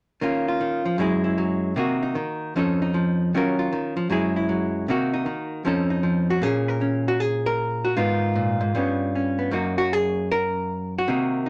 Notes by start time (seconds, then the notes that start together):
0.21 D#3 A#3 C#4 F4
0.48 F4
0.61 D#3
0.85 F3
0.98 F#2 F#3 G#3 E4 G#4
1.24 E4
1.38 F#3
1.76 C3 D#3 A#3 D#4 F#4
2.03 D#4
2.15 D#3
2.56 F2 F3 C#4 D#4 A4
2.82 D#4
2.94 F3
3.34 D#3 F#3 C#4 F4 A#4
3.59 F4
3.72 D#3
3.97 F3
4.10 F#2 F#3 G#3 E4 G#4
4.36 E4
4.49 F#3
4.88 C3 D#3 A#3 D#4 F#4
5.14 D#4
5.26 D#3
5.65 F2 F3 C#4 D#4 A4
5.90 D#4
6.03 F3
6.30 F#4
6.42 A#2 A#3 C#4 G#4
6.68 A#4
6.81 C#4
7.08 F#4
7.20 G#4
7.46 A#4
7.85 F#4
7.97 G#2 D#3 B3 D#4 F4
8.35 A#2
8.61 G#2
8.75 G2 G3 B3 C#4
9.15 C#4
9.39 B3
9.51 F#2 F#3 A#3 D#4 F#4
9.78 F#4
9.93 G#4
10.32 A#4
10.98 F#4
11.08 C3 D#3 A#3 D#4
11.46 D#4